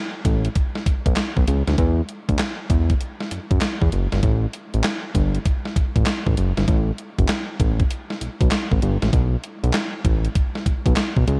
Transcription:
0.25 A1, kick, closed hi-hat
0.45 closed hi-hat
0.55 kick, closed hi-hat
0.75 snare
0.86 B1, kick, closed hi-hat
1.06 B1, kick, closed hi-hat
1.16 snare, clap, closed hi-hat
1.37 B1, kick
1.48 C#2, closed hi-hat
1.67 D2, snare, closed hi-hat
1.78 E2, kick, closed hi-hat
2.09 closed hi-hat
2.29 D2, kick, closed hi-hat
2.39 snare, clap, closed hi-hat
2.70 E2, kick, closed hi-hat
2.90 kick, closed hi-hat
3.01 closed hi-hat
3.20 snare
3.31 F#2, closed hi-hat
3.51 F#2, kick, closed hi-hat
3.61 snare, clap, closed hi-hat
3.82 E2, kick
3.92 F#1, closed hi-hat
4.12 G1, snare, closed hi-hat
4.23 A1, kick, closed hi-hat
4.53 closed hi-hat
4.74 A1, closed hi-hat
4.84 snare, clap, closed hi-hat
5.15 G1, kick, closed hi-hat
5.35 closed hi-hat
5.46 kick, closed hi-hat
5.65 snare
5.76 A1, kick, closed hi-hat
5.96 A1, kick, closed hi-hat
6.06 snare, clap, closed hi-hat
6.27 A1, kick
6.37 F#1, closed hi-hat
6.57 G1, snare, closed hi-hat
6.68 A1, kick, closed hi-hat
6.98 closed hi-hat
7.19 F#1, kick, closed hi-hat
7.28 snare, clap, closed hi-hat
7.60 A1, kick, closed hi-hat
7.80 kick, closed hi-hat
7.91 closed hi-hat
8.10 snare
8.21 B1, closed hi-hat
8.41 B1, kick, closed hi-hat
8.51 snare, clap, closed hi-hat
8.72 A1, kick
8.82 G1, closed hi-hat
9.02 A1, snare, closed hi-hat
9.13 B1, kick, closed hi-hat
9.44 closed hi-hat
9.63 B1, closed hi-hat
9.73 snare, clap, closed hi-hat
10.05 A1, kick, closed hi-hat
10.25 closed hi-hat
10.35 kick, closed hi-hat
10.55 snare
10.66 B1, kick, closed hi-hat
10.86 B1, kick, closed hi-hat
10.96 snare, clap, closed hi-hat
11.17 B1, kick
11.28 C#2, closed hi-hat

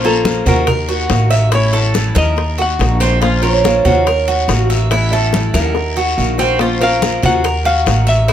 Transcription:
Already playing: A#1
0.04 A#3 C#4 F4 A4 C5, high conga
0.24 A#3 C#4 F4 C5, high bongo, high conga, short guiro
0.45 D#2 A#3 C#4 F4 F#4 A#4 C5, low conga, short guiro
0.66 A#4, muted steel-string acoustic guitar stroke, high bongo, high conga, low conga, long guiro
0.89 F#4, high conga
1.08 A1 D#3 A#3 D#4 F#4, high bongo, low bongo, high conga, short guiro
1.30 E5, short guiro
1.52 E3 A3 C#4 E4 C#5, high bongo, high conga, long guiro
1.73 A3 C#4 E4 A4, high bongo, high conga
1.94 E3 A3 C#4 E4, high bongo, high conga, short guiro
2.15 D#2 A3 C#4 E4 A#4 D#5, high bongo, high conga, short guiro
2.36 muted steel-string acoustic guitar stroke, high bongo, high conga, long guiro
2.58 F#4 F#5, high bongo, high conga
2.79 A#1 D#3 A#3 D#4 F#4, high bongo, low bongo, high conga, short guiro
3.00 C4 C5, short guiro
3.21 F3 A#3 C#4 F4 C5, high bongo, high conga, long guiro
3.42 A#3 C#4 F4 A#4 C5 C#5, high conga
3.64 A#3 C#4 F4 C5, high bongo, high conga, short guiro
3.85 D#2 A#3 C#4 F4 F#4 C5, low conga, short guiro
4.06 A#4, muted steel-string acoustic guitar stroke, high bongo, high conga, long guiro
4.28 F#4, high conga
4.48 A1 D#3 A#3 D#4 F#4 D#5, high bongo, low bongo, high conga, short guiro
4.70 E5, short guiro
4.90 E3 A3 C#4 E4, high bongo, high conga, long guiro
5.12 A3 C#4 E4 A4 E5, high bongo, high conga
5.33 E3 A3 C#4 E4, high bongo, high conga, short guiro
5.54 D#2 A3 C#4 E4 A#4 F#5, high bongo, high conga, short guiro
5.75 muted steel-string acoustic guitar stroke, high bongo, high conga, long guiro
5.97 F#4, high conga
6.16 A#1 D#3 A#3 D#4 F#4, high conga, short guiro
6.38 C4, low bongo, short guiro
6.58 F3 A#3 C#4 F4 C5, high bongo, high conga, long guiro
6.80 A#3 C#4 F4 A#4 C5 F5, high conga
7.02 A#3 C#4 F4 C5, high bongo, high conga, short guiro
7.23 D#2 A#3 C#4 F4 F#4 C5 F#5, low conga, short guiro
7.44 A#4, muted steel-string acoustic guitar stroke, high bongo, high conga, long guiro
7.65 F#4 F5, high conga
7.86 A1 D#3 A#3 D#4 F#4, high bongo, low bongo, high conga, short guiro
8.07 E5, short guiro
8.28 E3 E4, high bongo, long guiro

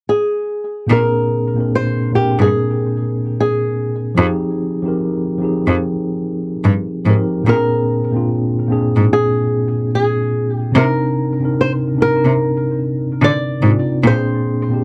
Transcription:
0.09 G#4
0.87 A#2 A#3 C4
0.91 D4 G#4 A#4
1.55 A#2 A#3 C4
1.59 D4 A#4
1.75 C5
2.12 A#2 A#3 C4 G4
2.16 D4 A#4
2.39 G2 G#4
3.40 G#4
4.15 F2 F3 C4 D#4
4.19 G4 G#4
4.82 F3 C4 D#4
4.86 G4 A#4
5.38 F3 C4 D#4
5.43 G4 G#4
5.67 F2
6.65 G2
7.04 G#2 F3 C4 D#4
7.09 G4 A#4
7.44 A#2 A#3 C4
7.48 D4 G#4 A#4
8.11 A#2 A#3 C4
8.15 D4 F4
8.67 A#2 A#3 C4
8.71 D4 G#4
8.96 G#2
9.13 G#4
9.95 G#4
10.52 G4
10.72 C3 C4 D4
10.76 D#4 A#4
11.40 C3 C4 D4
11.44 D#4 A#4
11.61 C5
11.95 C3 C4 D4
11.99 D#4 A#4
12.25 C3
13.22 D3 D5
13.61 G#2 C3 C4 D4
13.65 D#4 F4
14.03 A#2 A#3 C4 D4
14.07 G#4 C5
14.69 A#2 A#3 C4
14.73 D4 G4

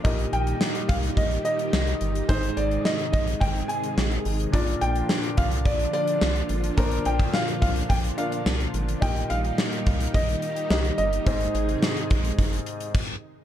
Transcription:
0.04 A#1 A#2 D#3 G3 D#4 G4 A#4 D#5, kick, closed hi-hat
0.19 closed hi-hat
0.33 A#1 G5, closed hi-hat
0.47 closed hi-hat
0.61 snare
0.75 closed hi-hat
0.89 C2 F5, kick, closed hi-hat
1.03 closed hi-hat
1.17 A#1 D#5, kick, closed hi-hat
1.31 closed hi-hat
1.45 D#5, closed hi-hat
1.59 closed hi-hat
1.73 C2, snare
1.87 closed hi-hat
2.01 G1, closed hi-hat
2.15 closed hi-hat
2.28 G#1 G#2 C3 D#3 G#3 D#4 G#4 C5 D#5, kick, closed hi-hat
2.43 closed hi-hat
2.57 G#1 D5, closed hi-hat
2.71 closed hi-hat
2.85 D#5, snare
2.99 closed hi-hat
3.12 A#1 D#5, kick, closed hi-hat
3.27 closed hi-hat
3.40 G#1 G5, kick, closed hi-hat
3.56 closed hi-hat
3.68 G#5, closed hi-hat
3.84 closed hi-hat
3.97 A#1, snare
4.12 closed hi-hat
4.25 G#1, open hi-hat
4.40 closed hi-hat
4.52 A#1 A#2 D3 F3 D4 F4 A#4 D5, kick, closed hi-hat
4.67 closed hi-hat
4.81 A#1 G5, closed hi-hat
4.96 closed hi-hat
5.09 snare
5.23 closed hi-hat
5.37 C2 F5, kick, closed hi-hat
5.51 closed hi-hat
5.65 A#1 D5, kick, closed hi-hat
5.79 closed hi-hat
5.93 D5, closed hi-hat
6.08 closed hi-hat
6.21 C2, snare
6.36 closed hi-hat
6.49 G#1, closed hi-hat
6.64 closed hi-hat
6.77 A#1 A#2 D4 F4 A#4 C5, kick, closed hi-hat
6.86 D5
6.91 closed hi-hat
7.05 A#1 G5, closed hi-hat
7.19 kick, closed hi-hat
7.34 F5, snare
7.48 closed hi-hat
7.62 C2 F5, kick, closed hi-hat
7.76 closed hi-hat
7.89 A#1 G5, kick, closed hi-hat
8.04 closed hi-hat
8.18 D4 F4 A#4 D5 F5, closed hi-hat
8.32 closed hi-hat
8.46 C2, snare
8.60 closed hi-hat
8.74 G#1, closed hi-hat
8.88 closed hi-hat
9.01 A#1 A#2 D#3 G3 D#4 G4 A#4 D#5 G5, kick, closed hi-hat
9.16 closed hi-hat
9.30 A#1 F5, closed hi-hat
9.44 closed hi-hat
9.58 snare
9.73 closed hi-hat
9.86 C2, kick, closed hi-hat
10.00 closed hi-hat
10.14 A#1 D#5, kick, closed hi-hat
10.29 closed hi-hat
10.42 closed hi-hat
10.56 closed hi-hat
10.70 C2 D#4 G4 A#4 D#5, snare
10.85 closed hi-hat
10.98 G1 D#5, closed hi-hat
11.13 closed hi-hat
11.25 G#1 G#2 C3 G#3 D#4 G#4 C5 D#5, kick, closed hi-hat
11.40 closed hi-hat
11.55 G#1, closed hi-hat
11.69 closed hi-hat
11.83 snare
11.97 closed hi-hat
12.11 A#1, kick, closed hi-hat
12.25 closed hi-hat
12.38 G#1, kick, closed hi-hat
12.53 closed hi-hat
12.66 closed hi-hat
12.80 closed hi-hat
12.94 kick, crash

